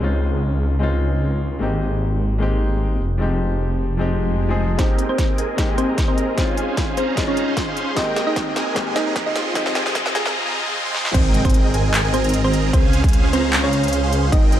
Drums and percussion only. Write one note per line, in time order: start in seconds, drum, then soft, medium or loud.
4.79 kick medium
4.79 snare soft
4.79 closed hi-hat medium
4.99 closed hi-hat medium
5.18 kick medium
5.18 snare soft
5.18 closed hi-hat medium
5.38 closed hi-hat medium
5.58 kick loud
5.58 snare medium
5.58 closed hi-hat medium
5.78 closed hi-hat medium
5.98 kick medium
5.98 snare medium
5.98 closed hi-hat medium
6.18 closed hi-hat medium
6.38 kick medium
6.38 snare medium
6.38 closed hi-hat medium
6.57 closed hi-hat medium
6.77 kick medium
6.77 snare medium
6.77 closed hi-hat medium
6.97 closed hi-hat medium
7.17 kick loud
7.17 snare medium
7.17 closed hi-hat medium
7.37 closed hi-hat medium
7.57 kick medium
7.57 snare medium
7.57 closed hi-hat medium
7.77 closed hi-hat medium
7.97 kick loud
7.97 snare medium
7.97 closed hi-hat medium
8.16 snare medium
8.16 closed hi-hat medium
8.36 kick medium
8.36 snare medium
8.36 closed hi-hat medium
8.56 snare medium
8.56 closed hi-hat medium
8.76 kick loud
8.76 snare medium
8.76 closed hi-hat medium
8.96 snare medium
8.96 closed hi-hat medium
9.16 kick loud
9.16 snare medium
9.16 closed hi-hat medium
9.36 snare medium
9.36 closed hi-hat medium
9.55 kick loud
9.55 snare medium
9.55 closed hi-hat medium
9.66 snare medium
9.75 snare loud
9.75 closed hi-hat medium
9.86 snare medium
9.95 kick loud
9.95 snare loud
9.95 closed hi-hat medium
10.06 snare medium
10.15 snare loud
10.15 closed hi-hat medium
10.26 snare medium
10.95 snare medium
11.05 snare medium
11.14 kick loud
11.14 closed hi-hat medium
11.14 crash loud
11.34 closed hi-hat medium
11.45 kick loud
11.45 closed hi-hat soft
11.50 closed hi-hat medium
11.54 closed hi-hat medium
11.74 closed hi-hat medium
11.94 clap loud
11.94 closed hi-hat medium
12.14 closed hi-hat medium
12.24 closed hi-hat soft
12.29 closed hi-hat medium
12.34 closed hi-hat medium
12.54 closed hi-hat medium
12.73 kick loud
12.73 closed hi-hat medium
12.93 closed hi-hat medium
13.04 kick loud
13.04 closed hi-hat soft
13.09 closed hi-hat medium
13.13 closed hi-hat medium
13.33 closed hi-hat medium
13.53 clap loud
13.53 closed hi-hat medium
13.73 closed hi-hat medium
13.83 closed hi-hat soft
13.88 closed hi-hat medium
13.93 closed hi-hat medium
14.13 closed hi-hat medium
14.32 kick loud
14.32 closed hi-hat medium
14.52 closed hi-hat medium